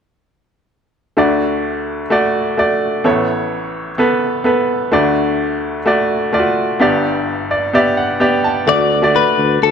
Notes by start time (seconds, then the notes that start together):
1.17 D2 D3 A3 F#4 D5
2.10 A3 F#4 D5
2.57 A3 F#4 D5
3.04 A1 A2 B3 A4 C#5
3.98 B3 A4 B4
4.44 B3 A4 B4
4.92 D2 D3 A3 F#4 D5
5.86 A3 F#4 D5
6.32 A3 F4 D5
6.39 F#4
6.80 G1 G2 B3 G4 D5
7.51 D5
7.73 B3 G4 D5 E5
7.97 F#5
8.20 B3 G4 D5 G5
8.44 A5
8.67 D2 D3 A3 F#4 D5
9.02 A3 F#4 D5
9.16 B4
9.38 D2
9.61 D2 A4